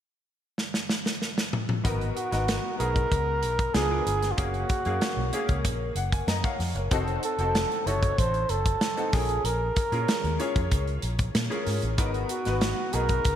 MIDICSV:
0, 0, Header, 1, 5, 480
1, 0, Start_track
1, 0, Tempo, 634249
1, 1396, Time_signature, 4, 2, 24, 8
1, 10108, End_track
2, 0, Start_track
2, 0, Title_t, "Flugelhorn"
2, 0, Program_c, 0, 56
2, 1641, Note_on_c, 0, 66, 81
2, 2088, Note_off_c, 0, 66, 0
2, 2108, Note_on_c, 0, 70, 100
2, 2829, Note_on_c, 0, 68, 102
2, 2841, Note_off_c, 0, 70, 0
2, 3266, Note_on_c, 0, 65, 53
2, 3277, Note_off_c, 0, 68, 0
2, 3313, Note_on_c, 0, 66, 87
2, 3324, Note_off_c, 0, 65, 0
2, 4274, Note_off_c, 0, 66, 0
2, 5482, Note_on_c, 0, 69, 82
2, 5954, Note_on_c, 0, 73, 96
2, 5965, Note_off_c, 0, 69, 0
2, 6196, Note_on_c, 0, 72, 98
2, 6207, Note_off_c, 0, 73, 0
2, 6435, Note_on_c, 0, 69, 83
2, 6447, Note_off_c, 0, 72, 0
2, 6912, Note_on_c, 0, 68, 83
2, 6924, Note_off_c, 0, 69, 0
2, 7152, Note_on_c, 0, 70, 96
2, 7163, Note_off_c, 0, 68, 0
2, 8113, Note_off_c, 0, 70, 0
2, 9316, Note_on_c, 0, 66, 82
2, 9793, Note_on_c, 0, 70, 101
2, 9805, Note_off_c, 0, 66, 0
2, 10108, Note_off_c, 0, 70, 0
2, 10108, End_track
3, 0, Start_track
3, 0, Title_t, "Grand piano"
3, 0, Program_c, 1, 0
3, 1389, Note_on_c, 1, 59, 74
3, 1393, Note_on_c, 1, 63, 75
3, 1396, Note_on_c, 1, 66, 74
3, 1399, Note_on_c, 1, 70, 89
3, 1554, Control_c, 1, 64, 127
3, 1651, Note_off_c, 1, 59, 0
3, 1653, Note_off_c, 1, 63, 0
3, 1654, Note_off_c, 1, 66, 0
3, 1656, Note_off_c, 1, 70, 0
3, 1750, Note_on_c, 1, 59, 67
3, 1751, Note_on_c, 1, 63, 60
3, 1755, Note_on_c, 1, 66, 65
3, 1759, Note_on_c, 1, 70, 74
3, 2011, Note_off_c, 1, 59, 0
3, 2012, Note_off_c, 1, 63, 0
3, 2013, Note_off_c, 1, 66, 0
3, 2015, Note_off_c, 1, 70, 0
3, 2109, Note_on_c, 1, 59, 68
3, 2113, Note_on_c, 1, 63, 62
3, 2113, Note_on_c, 1, 66, 64
3, 2118, Note_on_c, 1, 68, 68
3, 2715, Note_off_c, 1, 59, 0
3, 2717, Note_off_c, 1, 63, 0
3, 2717, Note_off_c, 1, 66, 0
3, 2719, Note_off_c, 1, 68, 0
3, 2830, Note_on_c, 1, 59, 66
3, 2837, Note_on_c, 1, 62, 60
3, 2838, Note_on_c, 1, 65, 61
3, 2841, Note_on_c, 1, 68, 77
3, 2846, Control_c, 1, 64, 0
3, 2929, Note_off_c, 1, 59, 0
3, 2932, Note_off_c, 1, 62, 0
3, 2933, Note_off_c, 1, 65, 0
3, 2934, Note_off_c, 1, 68, 0
3, 2950, Note_on_c, 1, 59, 65
3, 2956, Note_on_c, 1, 62, 64
3, 2957, Note_on_c, 1, 65, 61
3, 2960, Note_on_c, 1, 70, 73
3, 2981, Control_c, 1, 64, 127
3, 3211, Note_off_c, 1, 59, 0
3, 3214, Note_off_c, 1, 62, 0
3, 3214, Note_off_c, 1, 65, 0
3, 3216, Note_off_c, 1, 70, 0
3, 3308, Note_on_c, 1, 58, 73
3, 3310, Note_on_c, 1, 61, 64
3, 3312, Note_on_c, 1, 77, 60
3, 3314, Note_on_c, 1, 68, 82
3, 3324, Control_c, 1, 64, 0
3, 3440, Control_c, 1, 64, 127
3, 3570, Note_off_c, 1, 58, 0
3, 3571, Note_off_c, 1, 61, 0
3, 3572, Note_off_c, 1, 77, 0
3, 3573, Note_off_c, 1, 68, 0
3, 3675, Note_on_c, 1, 58, 66
3, 3677, Note_on_c, 1, 61, 64
3, 3681, Note_on_c, 1, 77, 61
3, 3683, Note_on_c, 1, 68, 83
3, 3933, Note_off_c, 1, 58, 0
3, 3934, Note_off_c, 1, 61, 0
3, 3936, Note_off_c, 1, 77, 0
3, 3937, Note_off_c, 1, 68, 0
3, 4031, Note_on_c, 1, 58, 80
3, 4037, Note_on_c, 1, 61, 73
3, 4037, Note_on_c, 1, 77, 72
3, 4041, Note_on_c, 1, 68, 85
3, 4513, Note_on_c, 1, 78, 63
3, 4625, Note_off_c, 1, 78, 0
3, 4634, Note_on_c, 1, 80, 59
3, 4636, Note_off_c, 1, 58, 0
3, 4638, Note_off_c, 1, 61, 0
3, 4639, Note_off_c, 1, 77, 0
3, 4641, Note_off_c, 1, 68, 0
3, 4746, Note_off_c, 1, 80, 0
3, 4751, Note_on_c, 1, 75, 53
3, 4751, Note_on_c, 1, 82, 61
3, 4864, Note_off_c, 1, 82, 0
3, 4867, Note_off_c, 1, 75, 0
3, 4873, Note_on_c, 1, 78, 59
3, 4874, Note_on_c, 1, 77, 65
3, 4879, Note_on_c, 1, 73, 57
3, 5101, Note_off_c, 1, 73, 0
3, 5102, Note_off_c, 1, 77, 0
3, 5112, Note_on_c, 1, 73, 56
3, 5119, Note_on_c, 1, 70, 46
3, 5209, Note_off_c, 1, 78, 0
3, 5230, Note_on_c, 1, 60, 86
3, 5232, Note_on_c, 1, 63, 77
3, 5236, Note_on_c, 1, 66, 76
3, 5239, Note_on_c, 1, 69, 85
3, 5245, Control_c, 1, 64, 0
3, 5341, Note_off_c, 1, 73, 0
3, 5345, Note_off_c, 1, 70, 0
3, 5387, Control_c, 1, 64, 127
3, 5491, Note_off_c, 1, 60, 0
3, 5492, Note_off_c, 1, 63, 0
3, 5493, Note_off_c, 1, 66, 0
3, 5495, Note_off_c, 1, 69, 0
3, 5592, Note_on_c, 1, 60, 68
3, 5595, Note_on_c, 1, 63, 61
3, 5597, Note_on_c, 1, 66, 65
3, 5600, Note_on_c, 1, 69, 82
3, 5852, Note_off_c, 1, 60, 0
3, 5853, Note_off_c, 1, 63, 0
3, 5854, Note_off_c, 1, 66, 0
3, 5856, Note_off_c, 1, 69, 0
3, 5951, Note_on_c, 1, 48, 64
3, 5952, Note_on_c, 1, 63, 65
3, 5957, Note_on_c, 1, 66, 60
3, 5959, Note_on_c, 1, 69, 75
3, 6555, Note_off_c, 1, 48, 0
3, 6556, Note_off_c, 1, 63, 0
3, 6558, Note_off_c, 1, 66, 0
3, 6559, Note_off_c, 1, 69, 0
3, 6786, Note_on_c, 1, 60, 65
3, 6787, Note_on_c, 1, 63, 62
3, 6792, Note_on_c, 1, 66, 59
3, 6795, Note_on_c, 1, 69, 77
3, 6907, Note_on_c, 1, 61, 62
3, 6909, Note_on_c, 1, 65, 57
3, 6910, Note_off_c, 1, 60, 0
3, 6911, Note_off_c, 1, 63, 0
3, 6913, Note_off_c, 1, 66, 0
3, 6914, Note_on_c, 1, 68, 57
3, 6915, Note_off_c, 1, 69, 0
3, 6916, Note_on_c, 1, 70, 74
3, 6923, Control_c, 1, 64, 0
3, 7071, Control_c, 1, 64, 127
3, 7390, Note_off_c, 1, 61, 0
3, 7392, Note_off_c, 1, 65, 0
3, 7394, Note_off_c, 1, 68, 0
3, 7395, Note_off_c, 1, 70, 0
3, 7508, Note_on_c, 1, 61, 67
3, 7509, Note_on_c, 1, 65, 68
3, 7514, Note_on_c, 1, 68, 62
3, 7516, Note_on_c, 1, 70, 74
3, 7769, Note_off_c, 1, 61, 0
3, 7770, Note_off_c, 1, 65, 0
3, 7772, Note_off_c, 1, 68, 0
3, 7773, Note_off_c, 1, 70, 0
3, 7865, Note_on_c, 1, 61, 82
3, 7868, Note_on_c, 1, 65, 73
3, 7871, Note_on_c, 1, 68, 69
3, 7875, Note_on_c, 1, 73, 86
3, 8472, Note_off_c, 1, 61, 0
3, 8473, Note_off_c, 1, 65, 0
3, 8475, Note_off_c, 1, 68, 0
3, 8477, Note_off_c, 1, 73, 0
3, 8703, Note_on_c, 1, 61, 79
3, 8704, Note_on_c, 1, 65, 67
3, 8706, Note_on_c, 1, 68, 76
3, 8708, Note_on_c, 1, 70, 78
3, 8966, Note_off_c, 1, 61, 0
3, 8967, Note_off_c, 1, 65, 0
3, 8968, Note_off_c, 1, 68, 0
3, 8969, Note_off_c, 1, 70, 0
3, 9063, Note_on_c, 1, 59, 75
3, 9066, Note_on_c, 1, 63, 80
3, 9067, Note_on_c, 1, 66, 75
3, 9072, Note_on_c, 1, 70, 95
3, 9082, Control_c, 1, 64, 0
3, 9219, Control_c, 1, 64, 127
3, 9326, Note_off_c, 1, 59, 0
3, 9328, Note_off_c, 1, 63, 0
3, 9328, Note_off_c, 1, 66, 0
3, 9331, Note_off_c, 1, 70, 0
3, 9424, Note_on_c, 1, 59, 67
3, 9424, Note_on_c, 1, 63, 60
3, 9428, Note_on_c, 1, 66, 58
3, 9434, Note_on_c, 1, 71, 74
3, 9686, Note_off_c, 1, 59, 0
3, 9687, Note_off_c, 1, 63, 0
3, 9688, Note_off_c, 1, 66, 0
3, 9691, Note_off_c, 1, 71, 0
3, 9785, Note_on_c, 1, 59, 67
3, 9789, Note_on_c, 1, 63, 55
3, 9794, Note_on_c, 1, 66, 62
3, 9795, Note_on_c, 1, 68, 72
3, 10108, Note_off_c, 1, 59, 0
3, 10108, Note_off_c, 1, 63, 0
3, 10108, Note_off_c, 1, 66, 0
3, 10108, Note_off_c, 1, 68, 0
3, 10108, End_track
4, 0, Start_track
4, 0, Title_t, "Fingered electric bass"
4, 0, Program_c, 2, 33
4, 1398, Note_on_c, 2, 32, 74
4, 1587, Note_off_c, 2, 32, 0
4, 1758, Note_on_c, 2, 32, 79
4, 1947, Note_off_c, 2, 32, 0
4, 2118, Note_on_c, 2, 35, 79
4, 2307, Note_off_c, 2, 35, 0
4, 2358, Note_on_c, 2, 37, 92
4, 2596, Note_off_c, 2, 37, 0
4, 2596, Note_on_c, 2, 35, 79
4, 2785, Note_off_c, 2, 35, 0
4, 2836, Note_on_c, 2, 37, 98
4, 3025, Note_off_c, 2, 37, 0
4, 3075, Note_on_c, 2, 31, 78
4, 3265, Note_off_c, 2, 31, 0
4, 3317, Note_on_c, 2, 30, 90
4, 3506, Note_off_c, 2, 30, 0
4, 3678, Note_on_c, 2, 42, 75
4, 3772, Note_off_c, 2, 42, 0
4, 3911, Note_on_c, 2, 35, 84
4, 4008, Note_off_c, 2, 35, 0
4, 4155, Note_on_c, 2, 37, 81
4, 4274, Note_off_c, 2, 37, 0
4, 4274, Note_on_c, 2, 34, 87
4, 4464, Note_off_c, 2, 34, 0
4, 4505, Note_on_c, 2, 30, 87
4, 4699, Note_off_c, 2, 30, 0
4, 4749, Note_on_c, 2, 42, 93
4, 4846, Note_off_c, 2, 42, 0
4, 4990, Note_on_c, 2, 41, 80
4, 5087, Note_off_c, 2, 41, 0
4, 5108, Note_on_c, 2, 30, 99
4, 5206, Note_off_c, 2, 30, 0
4, 5233, Note_on_c, 2, 29, 85
4, 5424, Note_off_c, 2, 29, 0
4, 5588, Note_on_c, 2, 29, 90
4, 5781, Note_off_c, 2, 29, 0
4, 5950, Note_on_c, 2, 30, 80
4, 6142, Note_off_c, 2, 30, 0
4, 6194, Note_on_c, 2, 33, 95
4, 6384, Note_off_c, 2, 33, 0
4, 6428, Note_on_c, 2, 30, 87
4, 6621, Note_off_c, 2, 30, 0
4, 6911, Note_on_c, 2, 34, 84
4, 7102, Note_off_c, 2, 34, 0
4, 7145, Note_on_c, 2, 34, 83
4, 7339, Note_off_c, 2, 34, 0
4, 7508, Note_on_c, 2, 46, 87
4, 7605, Note_off_c, 2, 46, 0
4, 7749, Note_on_c, 2, 39, 90
4, 7846, Note_off_c, 2, 39, 0
4, 7991, Note_on_c, 2, 41, 66
4, 8087, Note_off_c, 2, 41, 0
4, 8112, Note_on_c, 2, 37, 96
4, 8302, Note_off_c, 2, 37, 0
4, 8347, Note_on_c, 2, 34, 91
4, 8539, Note_off_c, 2, 34, 0
4, 8588, Note_on_c, 2, 46, 88
4, 8685, Note_off_c, 2, 46, 0
4, 8830, Note_on_c, 2, 44, 79
4, 8926, Note_off_c, 2, 44, 0
4, 8953, Note_on_c, 2, 33, 93
4, 9070, Note_off_c, 2, 33, 0
4, 9070, Note_on_c, 2, 32, 78
4, 9261, Note_off_c, 2, 32, 0
4, 9434, Note_on_c, 2, 32, 85
4, 9623, Note_off_c, 2, 32, 0
4, 9791, Note_on_c, 2, 35, 84
4, 9981, Note_off_c, 2, 35, 0
4, 10030, Note_on_c, 2, 37, 82
4, 10108, Note_off_c, 2, 37, 0
4, 10108, End_track
5, 0, Start_track
5, 0, Title_t, "Drums"
5, 439, Note_on_c, 9, 38, 52
5, 515, Note_off_c, 9, 38, 0
5, 560, Note_on_c, 9, 38, 64
5, 636, Note_off_c, 9, 38, 0
5, 677, Note_on_c, 9, 38, 73
5, 753, Note_off_c, 9, 38, 0
5, 802, Note_on_c, 9, 38, 74
5, 877, Note_off_c, 9, 38, 0
5, 921, Note_on_c, 9, 38, 59
5, 996, Note_off_c, 9, 38, 0
5, 1042, Note_on_c, 9, 38, 80
5, 1118, Note_off_c, 9, 38, 0
5, 1159, Note_on_c, 9, 45, 84
5, 1234, Note_off_c, 9, 45, 0
5, 1278, Note_on_c, 9, 45, 92
5, 1354, Note_off_c, 9, 45, 0
5, 1399, Note_on_c, 9, 36, 108
5, 1402, Note_on_c, 9, 42, 92
5, 1474, Note_off_c, 9, 36, 0
5, 1478, Note_off_c, 9, 42, 0
5, 1524, Note_on_c, 9, 42, 30
5, 1600, Note_off_c, 9, 42, 0
5, 1639, Note_on_c, 9, 42, 64
5, 1715, Note_off_c, 9, 42, 0
5, 1759, Note_on_c, 9, 42, 46
5, 1762, Note_on_c, 9, 38, 33
5, 1835, Note_off_c, 9, 42, 0
5, 1837, Note_off_c, 9, 38, 0
5, 1879, Note_on_c, 9, 42, 68
5, 1882, Note_on_c, 9, 38, 99
5, 1955, Note_off_c, 9, 42, 0
5, 1958, Note_off_c, 9, 38, 0
5, 2119, Note_on_c, 9, 42, 62
5, 2195, Note_off_c, 9, 42, 0
5, 2238, Note_on_c, 9, 36, 80
5, 2241, Note_on_c, 9, 42, 40
5, 2314, Note_off_c, 9, 36, 0
5, 2316, Note_off_c, 9, 42, 0
5, 2358, Note_on_c, 9, 36, 75
5, 2359, Note_on_c, 9, 42, 78
5, 2434, Note_off_c, 9, 36, 0
5, 2435, Note_off_c, 9, 42, 0
5, 2593, Note_on_c, 9, 42, 72
5, 2668, Note_off_c, 9, 42, 0
5, 2717, Note_on_c, 9, 36, 82
5, 2717, Note_on_c, 9, 42, 49
5, 2792, Note_off_c, 9, 36, 0
5, 2793, Note_off_c, 9, 42, 0
5, 2834, Note_on_c, 9, 38, 94
5, 2834, Note_on_c, 9, 42, 64
5, 2909, Note_off_c, 9, 42, 0
5, 2910, Note_off_c, 9, 38, 0
5, 3078, Note_on_c, 9, 42, 67
5, 3154, Note_off_c, 9, 42, 0
5, 3198, Note_on_c, 9, 42, 51
5, 3200, Note_on_c, 9, 38, 32
5, 3273, Note_off_c, 9, 42, 0
5, 3276, Note_off_c, 9, 38, 0
5, 3313, Note_on_c, 9, 42, 84
5, 3315, Note_on_c, 9, 36, 113
5, 3389, Note_off_c, 9, 42, 0
5, 3391, Note_off_c, 9, 36, 0
5, 3436, Note_on_c, 9, 42, 32
5, 3512, Note_off_c, 9, 42, 0
5, 3552, Note_on_c, 9, 42, 63
5, 3555, Note_on_c, 9, 36, 89
5, 3628, Note_off_c, 9, 42, 0
5, 3631, Note_off_c, 9, 36, 0
5, 3672, Note_on_c, 9, 42, 40
5, 3747, Note_off_c, 9, 42, 0
5, 3795, Note_on_c, 9, 42, 75
5, 3798, Note_on_c, 9, 38, 102
5, 3870, Note_off_c, 9, 42, 0
5, 3873, Note_off_c, 9, 38, 0
5, 4032, Note_on_c, 9, 42, 66
5, 4108, Note_off_c, 9, 42, 0
5, 4152, Note_on_c, 9, 42, 42
5, 4154, Note_on_c, 9, 36, 78
5, 4228, Note_off_c, 9, 42, 0
5, 4230, Note_off_c, 9, 36, 0
5, 4273, Note_on_c, 9, 42, 86
5, 4274, Note_on_c, 9, 36, 81
5, 4349, Note_off_c, 9, 42, 0
5, 4350, Note_off_c, 9, 36, 0
5, 4508, Note_on_c, 9, 42, 65
5, 4584, Note_off_c, 9, 42, 0
5, 4635, Note_on_c, 9, 36, 82
5, 4635, Note_on_c, 9, 42, 52
5, 4711, Note_off_c, 9, 36, 0
5, 4711, Note_off_c, 9, 42, 0
5, 4752, Note_on_c, 9, 38, 84
5, 4752, Note_on_c, 9, 42, 73
5, 4828, Note_off_c, 9, 38, 0
5, 4828, Note_off_c, 9, 42, 0
5, 4874, Note_on_c, 9, 36, 87
5, 4879, Note_on_c, 9, 42, 33
5, 4950, Note_off_c, 9, 36, 0
5, 4954, Note_off_c, 9, 42, 0
5, 4995, Note_on_c, 9, 46, 63
5, 4997, Note_on_c, 9, 38, 32
5, 5071, Note_off_c, 9, 46, 0
5, 5072, Note_off_c, 9, 38, 0
5, 5112, Note_on_c, 9, 42, 52
5, 5187, Note_off_c, 9, 42, 0
5, 5230, Note_on_c, 9, 42, 91
5, 5233, Note_on_c, 9, 36, 102
5, 5305, Note_off_c, 9, 42, 0
5, 5308, Note_off_c, 9, 36, 0
5, 5355, Note_on_c, 9, 42, 31
5, 5430, Note_off_c, 9, 42, 0
5, 5471, Note_on_c, 9, 42, 69
5, 5547, Note_off_c, 9, 42, 0
5, 5590, Note_on_c, 9, 42, 45
5, 5666, Note_off_c, 9, 42, 0
5, 5713, Note_on_c, 9, 42, 72
5, 5716, Note_on_c, 9, 38, 94
5, 5789, Note_off_c, 9, 42, 0
5, 5792, Note_off_c, 9, 38, 0
5, 5840, Note_on_c, 9, 42, 34
5, 5916, Note_off_c, 9, 42, 0
5, 5956, Note_on_c, 9, 42, 64
5, 6032, Note_off_c, 9, 42, 0
5, 6074, Note_on_c, 9, 36, 78
5, 6075, Note_on_c, 9, 42, 39
5, 6150, Note_off_c, 9, 36, 0
5, 6151, Note_off_c, 9, 42, 0
5, 6194, Note_on_c, 9, 36, 82
5, 6194, Note_on_c, 9, 42, 75
5, 6269, Note_off_c, 9, 36, 0
5, 6270, Note_off_c, 9, 42, 0
5, 6312, Note_on_c, 9, 42, 31
5, 6388, Note_off_c, 9, 42, 0
5, 6426, Note_on_c, 9, 42, 72
5, 6502, Note_off_c, 9, 42, 0
5, 6550, Note_on_c, 9, 42, 54
5, 6551, Note_on_c, 9, 36, 86
5, 6626, Note_off_c, 9, 42, 0
5, 6627, Note_off_c, 9, 36, 0
5, 6669, Note_on_c, 9, 38, 82
5, 6669, Note_on_c, 9, 42, 68
5, 6744, Note_off_c, 9, 38, 0
5, 6744, Note_off_c, 9, 42, 0
5, 6793, Note_on_c, 9, 42, 35
5, 6869, Note_off_c, 9, 42, 0
5, 6908, Note_on_c, 9, 46, 67
5, 6910, Note_on_c, 9, 38, 35
5, 6911, Note_on_c, 9, 36, 102
5, 6984, Note_off_c, 9, 46, 0
5, 6986, Note_off_c, 9, 38, 0
5, 6987, Note_off_c, 9, 36, 0
5, 7030, Note_on_c, 9, 42, 48
5, 7106, Note_off_c, 9, 42, 0
5, 7150, Note_on_c, 9, 42, 88
5, 7226, Note_off_c, 9, 42, 0
5, 7389, Note_on_c, 9, 42, 71
5, 7391, Note_on_c, 9, 36, 90
5, 7464, Note_off_c, 9, 42, 0
5, 7467, Note_off_c, 9, 36, 0
5, 7510, Note_on_c, 9, 42, 42
5, 7586, Note_off_c, 9, 42, 0
5, 7631, Note_on_c, 9, 42, 71
5, 7634, Note_on_c, 9, 38, 99
5, 7707, Note_off_c, 9, 42, 0
5, 7710, Note_off_c, 9, 38, 0
5, 7753, Note_on_c, 9, 42, 33
5, 7829, Note_off_c, 9, 42, 0
5, 7868, Note_on_c, 9, 42, 66
5, 7944, Note_off_c, 9, 42, 0
5, 7990, Note_on_c, 9, 36, 85
5, 7991, Note_on_c, 9, 42, 42
5, 8066, Note_off_c, 9, 36, 0
5, 8066, Note_off_c, 9, 42, 0
5, 8109, Note_on_c, 9, 42, 82
5, 8110, Note_on_c, 9, 36, 87
5, 8184, Note_off_c, 9, 42, 0
5, 8186, Note_off_c, 9, 36, 0
5, 8230, Note_on_c, 9, 42, 29
5, 8305, Note_off_c, 9, 42, 0
5, 8343, Note_on_c, 9, 42, 71
5, 8419, Note_off_c, 9, 42, 0
5, 8466, Note_on_c, 9, 42, 50
5, 8470, Note_on_c, 9, 36, 79
5, 8542, Note_off_c, 9, 42, 0
5, 8545, Note_off_c, 9, 36, 0
5, 8588, Note_on_c, 9, 42, 69
5, 8589, Note_on_c, 9, 38, 98
5, 8664, Note_off_c, 9, 38, 0
5, 8664, Note_off_c, 9, 42, 0
5, 8716, Note_on_c, 9, 42, 30
5, 8791, Note_off_c, 9, 42, 0
5, 8828, Note_on_c, 9, 46, 65
5, 8830, Note_on_c, 9, 38, 35
5, 8904, Note_off_c, 9, 46, 0
5, 8905, Note_off_c, 9, 38, 0
5, 8946, Note_on_c, 9, 42, 52
5, 9022, Note_off_c, 9, 42, 0
5, 9067, Note_on_c, 9, 42, 85
5, 9068, Note_on_c, 9, 36, 108
5, 9143, Note_off_c, 9, 42, 0
5, 9144, Note_off_c, 9, 36, 0
5, 9190, Note_on_c, 9, 42, 34
5, 9266, Note_off_c, 9, 42, 0
5, 9303, Note_on_c, 9, 42, 66
5, 9379, Note_off_c, 9, 42, 0
5, 9425, Note_on_c, 9, 42, 45
5, 9427, Note_on_c, 9, 38, 30
5, 9501, Note_off_c, 9, 42, 0
5, 9503, Note_off_c, 9, 38, 0
5, 9544, Note_on_c, 9, 42, 69
5, 9547, Note_on_c, 9, 38, 99
5, 9620, Note_off_c, 9, 42, 0
5, 9623, Note_off_c, 9, 38, 0
5, 9785, Note_on_c, 9, 42, 66
5, 9861, Note_off_c, 9, 42, 0
5, 9905, Note_on_c, 9, 42, 46
5, 9909, Note_on_c, 9, 36, 77
5, 9981, Note_off_c, 9, 42, 0
5, 9985, Note_off_c, 9, 36, 0
5, 10024, Note_on_c, 9, 42, 73
5, 10029, Note_on_c, 9, 36, 85
5, 10100, Note_off_c, 9, 42, 0
5, 10105, Note_off_c, 9, 36, 0
5, 10108, End_track
0, 0, End_of_file